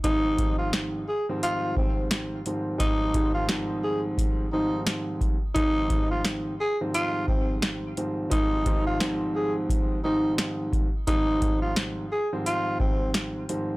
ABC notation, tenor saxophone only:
X:1
M:4/4
L:1/16
Q:"Swing 16ths" 1/4=87
K:Fm
V:1 name="Tenor saxophone"
E3 F z2 A z F2 C2 z4 | E3 F z2 A z3 E2 z4 | E3 F z2 A z F2 C2 z4 | E3 F z2 A z3 E2 z4 |
E3 F z2 A z F2 C2 z4 |]